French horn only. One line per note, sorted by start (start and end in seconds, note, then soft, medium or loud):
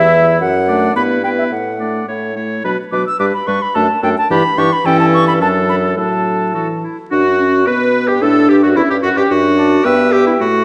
0.00 0.41 E3 loud
0.68 0.95 A3 medium
0.95 1.22 B3 medium
1.23 1.51 B3 medium
1.79 2.07 A3 medium
2.08 2.36 A3 medium
2.36 2.64 A3 medium
2.64 2.77 F#3 medium
2.92 3.05 F#3 medium
3.20 3.32 G3 medium
3.48 3.60 G3 medium
3.75 3.88 A3 medium
4.04 4.16 A3 medium
4.30 4.43 E3 medium
4.58 4.70 E3 medium
4.85 5.42 E3 loud
5.41 5.97 F#3 medium
5.97 6.56 F#3 medium
6.54 6.83 E3 medium
7.11 7.24 D4 medium
7.39 7.66 C#4 medium
7.67 8.21 B3 medium
8.22 8.77 D4 loud
8.76 9.31 C#4 medium
9.30 9.84 D4 loud
9.85 10.39 B3 medium
10.41 10.64 A3 medium